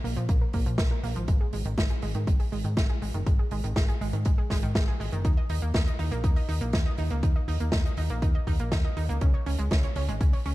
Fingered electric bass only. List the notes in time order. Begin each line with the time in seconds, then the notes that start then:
0.04 A#1
0.16 A#2
0.29 A#1
0.54 A#1
0.66 A#2
0.79 A#1
1.03 A#1
1.16 G#1
1.28 G#1
1.53 G#1
1.65 G#1
1.78 G#1
2.02 G#1
2.15 G#2
2.27 G#1
2.52 G#1
2.64 G#2
2.77 G#1
3.02 G#1
3.14 F#1
3.26 G#1
3.51 G#1
3.64 G#1
3.76 G#1
4.01 G#1
4.13 G#2
4.26 G#1
4.50 G#1
4.63 G#2
4.75 G#1
5.00 G#1
5.12 F#1
5.25 D#2
5.50 D#2
5.62 D#2
5.74 D#2
5.99 D#2
6.11 A#1
6.24 D#2
6.49 D#2
6.61 A#1
6.73 D#2
6.98 D#2
7.10 C#2
7.23 D#2
7.48 D#2
7.60 D#2
7.73 D#2
7.97 D#2
8.10 A#1
8.22 D#2
8.47 D#2
8.59 A#1
8.72 D#2
8.97 D#2
9.09 C#2
9.21 C#2
9.46 C#2
9.59 C#2
9.71 C#2
9.96 C#2
10.08 G#1
10.21 C#2
10.45 C#2